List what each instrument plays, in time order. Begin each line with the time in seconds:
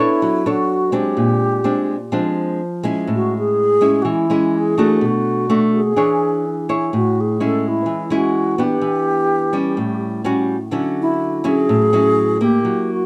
Already playing: nylon-string guitar B3 D4
0.00 alto flute E4, nylon-string guitar A4 C#5
0.22 nylon-string guitar F#3
0.46 nylon-string guitar D4 A4 C#5, alto flute F#4
0.92 nylon-string guitar G#3 C4 D4, alto flute G4
1.17 nylon-string guitar A#2
1.64 nylon-string guitar G#3 C4 D4
2.12 nylon-string guitar F3 G#3 C4 D4
2.83 nylon-string guitar G#3 C#4 E4
3.07 nylon-string guitar A2
3.15 alto flute F#4
3.39 alto flute G#4
3.81 nylon-string guitar G#3 C#4 E4
4.02 nylon-string guitar E3, alto flute F#4
4.09 alto flute E4
4.30 nylon-string guitar G#3 C#4 E4
4.57 alto flute G#4
4.78 nylon-string guitar A3 D4 F#4
5.01 nylon-string guitar B2
5.05 alto flute F#4
5.50 nylon-string guitar A3 D4 F#4
5.75 alto flute G#4
5.96 nylon-string guitar E3 D4 G#4 C#5
6.69 nylon-string guitar E4 G#4 C#5
6.93 nylon-string guitar A2, alto flute F#4
7.21 alto flute G#4
7.40 nylon-string guitar G#3 C#4 E4, alto flute A4
7.68 alto flute E4
7.86 nylon-string guitar E3
8.10 nylon-string guitar G#3 C#4 E4
8.16 alto flute F#4
8.58 nylon-string guitar B3 D4 G4
8.63 alto flute G4
8.81 nylon-string guitar E3
9.53 nylon-string guitar G3 C#4
9.77 nylon-string guitar A2
10.24 nylon-string guitar G3 C#4 F#4
10.71 nylon-string guitar D3 F#3 C#4 E4
11.01 alto flute E4
11.44 nylon-string guitar F#3 C#4 E4, alto flute G#4
11.69 nylon-string guitar A2
11.93 nylon-string guitar F#3 C#4 E4
12.41 nylon-string guitar A#3 E4, alto flute G4
12.65 nylon-string guitar F#3
12.93 alto flute F#4